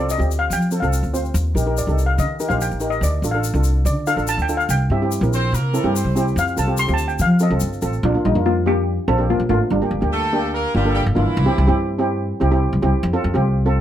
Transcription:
Already playing: C2 C4 F4
0.00 A4 D5
0.10 D#5, shaker
0.18 D2 C4 F4 G4, shaker
0.31 shaker
0.39 F5
0.50 F3 G5, shaker
0.62 shaker
0.71 C4 F4 A4, shaker
0.80 C2 C4 F4 A4 F5, shaker
0.93 shaker
1.03 D2, shaker
1.14 C4 F4 C5, shaker
1.25 shaker
1.34 D#2, shaker
1.55 A#1 D#4 G4 A#4, shaker
1.66 D#4 G4 A#4
1.77 D5, shaker
1.87 C2 D#4 G4 A4, shaker
1.98 shaker
2.06 F5
2.18 D#3 D#5, shaker
2.40 D#4 G4 A#4, shaker
2.49 A#1 D#4 G4 C5 F5, shaker
2.61 G5, shaker
2.71 A1, shaker
2.80 D#4 G4 A#4, shaker
2.90 D#5, shaker
3.01 D2 D5, shaker
3.22 A1 D4 F4 A4, shaker
3.31 D4 F4 A4 F5
3.44 shaker
3.54 C2 D4 F4 A4, shaker
3.64 shaker
3.85 D3 D5, shaker
4.07 D4 F4 A4 F5, shaker
4.16 A1 D4 F4 A4, shaker
4.27 A5, shaker
4.37 D2, shaker
4.42 G5
4.49 D4 F4 A4, shaker
4.57 F5, shaker
4.69 C2 G5, shaker
4.90 G2 C4 E4 G4 E5
5.02 C4 E4 G4
5.12 shaker
5.21 A#1 C4 E4 A#4, shaker
5.33 C4 C5, shaker
5.52 C3 A#3 A#4, shaker
5.74 C4 E4 A4, shaker
5.83 G2 C4 E4 G4
5.96 C4 C5, shaker
6.04 C2
6.15 C4 E4 G4, shaker
6.28 shaker
6.36 F2 F5, shaker
6.47 shaker
6.57 C2 C4 F4 A4 A5, shaker
6.67 C4 F4 G4
6.77 C6, shaker
6.88 D2 C4 F4 G4, shaker
6.94 A5
6.98 shaker
7.08 G5, shaker
7.19 F3 F5, shaker
7.39 C4 F4 A4 D#5, shaker
7.50 C2 C4 F4 A4
7.60 G1, shaker
7.73 shaker
7.82 A1 C4 F4 A4, shaker
7.93 shaker
8.03 A#1 D4 F4
8.14 A#3 D4 F4
8.25 A#1 G3 D#4
8.35 F2 A#3 D4 F4
8.46 A#3 F4
8.66 A#3 D4 G4
9.08 A#1 A#3 C4 D4 F4 A4
9.18 A#3 D4 G4
9.30 A#3 F4
9.40 A#1
9.49 G#1 A3 A#3 D4 F4
9.70 G1 G3 D4
9.82 A#3 D4 G4
9.91 G1
10.01 D2 A#3 D4 G4
10.12 A3 A4
10.33 A#3 D4 G4
10.55 A#3 A#4
10.75 G1 G3 A#3 D4 F4 G4
10.85 A#3 D4 A4
10.94 G3 G4
11.06 G1
11.15 G1 E3 A#3 D4 E4 F4
11.37 C2
11.46 C4 E4 G4
11.58 C2
11.67 G2 C4 E4 G4
11.99 C4 E4 G4
12.40 C2 C4 E4 G4
12.51 C4 E4 G4
12.73 C2
12.82 C2 C4 E4 G4
13.03 F2
13.13 C4 F4 A4
13.24 F2
13.34 C2 C4 F4 G4
13.66 C4 F4 A4

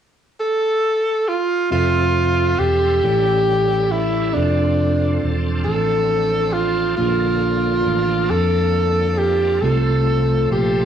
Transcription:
0.40 A4
1.28 F4
1.70 F1 F3 C4 F4 A4 E5
2.59 E1 G4
3.02 A1 A2 G3 C#4 E4 G4 A4
3.91 E4
4.33 F1 F3 C4 D4 F4 A4
4.37 A4
5.23 E1
5.64 A1 A4
6.53 F4
6.97 A#1 D3 F3 A#3 D4 F4 G#4
7.02 G#4
7.07 A4
7.86 A1
8.29 F2 A4
9.18 G4
9.62 C2 C3 F3 A3 C4 F4 G4 G#4 A4
9.70 A4
10.50 A#1 G4

